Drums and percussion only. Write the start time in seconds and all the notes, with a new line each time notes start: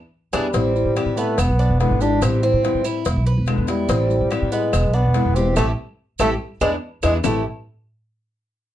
0.33 cowbell, claves, maracas
0.53 cowbell, maracas
0.76 maracas
0.97 cowbell, claves, maracas
1.17 maracas
1.38 cowbell, claves, maracas
1.60 maracas
1.80 cowbell, maracas
2.01 maracas
2.22 cowbell, claves, maracas
2.43 maracas
2.64 cowbell, maracas
2.85 claves, maracas
3.05 cowbell, maracas
3.26 maracas
3.46 cowbell, claves, maracas
3.67 cowbell, maracas
3.89 cowbell, maracas
4.10 maracas
4.31 cowbell, claves, maracas
4.52 maracas
4.73 cowbell, claves, maracas
4.95 maracas
5.14 cowbell, maracas
5.36 maracas
5.56 cowbell, claves, maracas
6.19 cowbell, claves, maracas
6.61 cowbell, claves, maracas
7.03 cowbell, claves, maracas
7.24 low bongo, claves, maracas